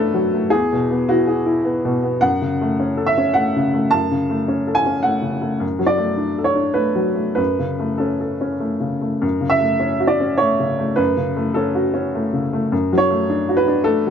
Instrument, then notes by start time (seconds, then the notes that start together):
upright piano
Already playing: F#2 F#3 A3 D4 F#4 A4 B4 C#5
0.14 F#3
0.34 A3
0.50 E2 G#4
0.73 B2
0.91 B3
1.09 E4 F#4
1.27 G#4
1.46 E4
1.65 B3
1.85 B2
2.04 B3
2.21 F#2 F#5
2.42 C#3
2.61 A3
2.80 C#4
2.97 A4
3.06 E5
3.17 C#4
3.34 A3 F#5
3.56 C#3
3.74 A3
3.91 F#2 A5
4.11 C#3
4.30 A3
4.48 C#4
4.67 A4
4.75 G#5
4.86 C#4
5.03 A3 F#5
5.22 C#3
5.42 A3
5.60 F#2
5.79 F#3
5.87 D5
5.98 A3
6.17 D4
6.38 A4
6.44 C#5
6.55 D4
6.74 A3 B4
6.95 F#3
7.15 A3
7.35 F#2 B4
7.59 C#3
7.79 A3
7.98 C#4 A4
8.20 A4
8.41 C#4
8.60 A3
8.80 C#3
9.01 A3
9.22 F#2
9.41 C#3
9.50 E5
9.60 A3
9.80 C#4
10.00 F#4
10.07 D5
10.20 C#4
10.38 A3 C#5
10.60 C#3
10.79 A3
10.96 F#2 B4
11.17 C#3
11.37 A3
11.54 C#4 A4
11.75 F#4
11.94 C#4
12.15 A3
12.33 C#3
12.53 A3
12.72 F#2
12.93 F#3
12.98 C#5
13.10 A3
13.29 D4
13.49 F#4
13.57 B4
13.68 D4
13.84 A3 A4
14.07 F#3